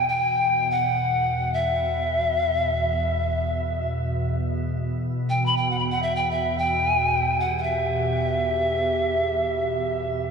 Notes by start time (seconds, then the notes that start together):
Already playing: E2 B2
0.09 G5
0.71 F#5
1.54 E5
5.30 G5
5.46 B5
5.57 G5
5.70 F#5
5.79 B5
5.91 F#5
6.03 E5
6.16 G5
6.31 E5
6.58 G5
7.37 G4 F#5
7.58 F#5
7.63 E5